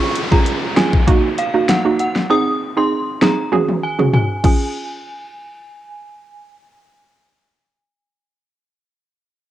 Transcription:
Already playing: C#4 F4 G#4, downlifter
0.15 closed hi-hat
0.32 C#4 F4 G#4 A#5, kick
0.46 closed hi-hat
0.77 C#4 F4 G#4 G#5, snare, closed hi-hat
0.93 kick
1.07 A#3 D#4 F#4, kick, closed hi-hat
1.38 F5, closed hi-hat
1.54 A#3 D#4 F#4
1.69 F#5, snare, closed hi-hat
1.85 A#3 D#4 F#4
1.99 F#5, closed hi-hat
2.15 snare
2.30 C4 D#4 G#4 D#6
2.77 C4 D#4 G#4 C6
3.21 C4 D#4 G#4 A#5, snare
3.52 C#4 F#4 G#4, high tom
3.69 high tom
3.83 G#5
3.99 C#4 F#4 G#4, mid tom
4.14 G#5, mid tom
4.44 C#4 F4 G#4 G#5, kick, crash

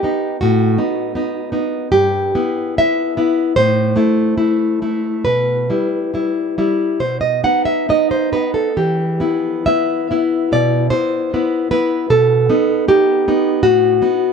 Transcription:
Already playing: G4
0.03 B3 D#4
0.41 A2 F#4
0.78 B3 D#4
1.15 B3 D#4
1.52 B3 D#4
1.92 G2 G4
2.35 B3 E4
2.78 B3 E4 E5
3.17 B3 E4
3.56 A2 C5
3.96 A3 E4
4.37 A3 E4
4.82 A3 E4
5.25 B2 B4
5.70 G3 E4
6.14 G3 E4
6.58 G3 E4
7.00 B2 C5
7.21 D#5
7.44 B3 D#4 F#5
7.65 E5
7.89 B3 D#4 D#5
8.11 C5
8.32 B3 D#4 B4
8.54 A4
8.77 E3 G4
9.20 B3 E4
9.66 B3 E4 E5
10.11 B3 E4
10.52 B2 D5
10.90 B3 E4 C5
11.34 B3 E4
11.71 B3 E4 B4
12.10 B2 A4
12.50 B3 D#4
12.88 B3 D#4 G4
13.28 B3 D#4
13.63 A2 F#4
14.02 B3 D#4

